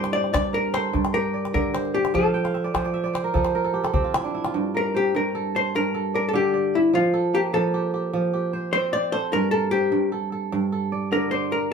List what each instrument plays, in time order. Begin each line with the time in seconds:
Already playing: kora G2 C4 D4 E4 G4 A4 D5, hollow-body jazz guitar C5
0.04 calabash click
0.13 kora C5, hollow-body jazz guitar D5, calabash click
0.24 calabash click
0.33 kora G2, hollow-body jazz guitar D5, calabash thump, calabash click
0.53 kora A#4, hollow-body jazz guitar A#4
0.74 kora A4, hollow-body jazz guitar C5, calabash click
0.93 kora G2, calabash thump
1.05 calabash click
1.14 kora G4, hollow-body jazz guitar A#4
1.34 kora D5
1.45 calabash click
1.54 kora D3, hollow-body jazz guitar A#4, calabash thump
1.74 kora C5, calabash click
1.85 calabash click
1.94 hollow-body jazz guitar G4, kora D5
2.05 calabash click
2.14 kora F3, hollow-body jazz guitar A4, calabash thump
2.24 kora F5
2.34 kora G5, calabash click
2.44 kora F5, calabash click
2.54 kora E5, calabash click
2.64 kora D5, calabash click
2.74 kora F3 C5, calabash thump, calabash click
2.84 kora D5, calabash click
2.94 kora E5
3.04 kora D5, calabash click
3.14 kora C5, calabash click
3.24 kora A#4
3.34 kora F3 A4, calabash thump
3.43 hollow-body jazz guitar G4, kora C5, calabash click
3.55 kora A#4
3.64 kora A4
3.74 kora G4
3.84 kora A4, calabash click
3.93 kora C4 G4, calabash thump
4.04 kora F4
4.14 kora E4, calabash click
4.24 kora D4, calabash click
4.34 kora E4
4.44 kora F4, calabash click
4.54 kora G2
4.74 kora A#4, hollow-body jazz guitar A#4
4.95 hollow-body jazz guitar G4, kora C5
5.15 kora G2, hollow-body jazz guitar A#4
5.35 kora A4
5.55 hollow-body jazz guitar C5, kora A5
5.75 kora G2, hollow-body jazz guitar A#4
5.94 kora A4
6.14 hollow-body jazz guitar A#4, kora D5
6.29 hollow-body jazz guitar A4
6.33 kora D3 D5, hollow-body jazz guitar G4
6.54 kora D5
6.75 hollow-body jazz guitar E4
6.93 kora F3, hollow-body jazz guitar F4
7.14 kora A4
7.34 kora A#3, hollow-body jazz guitar G4
7.53 kora F3, hollow-body jazz guitar A4
7.74 kora G4
7.94 kora G4
8.13 kora F3
8.33 kora G4
8.53 kora C5
8.73 kora C4 C5, hollow-body jazz guitar C5
8.93 kora C5, hollow-body jazz guitar D5
9.12 kora A4, hollow-body jazz guitar C5
9.33 kora G2, hollow-body jazz guitar A#4
9.51 hollow-body jazz guitar A4, kora A#4
9.71 hollow-body jazz guitar G4, kora C5
9.92 kora G2
10.12 kora A4
10.32 kora A4
10.52 kora G2
10.72 kora A4
10.92 kora D5
11.12 kora D3 D5, hollow-body jazz guitar A#4
11.31 hollow-body jazz guitar C5, kora D5
11.52 kora A#4, hollow-body jazz guitar A#4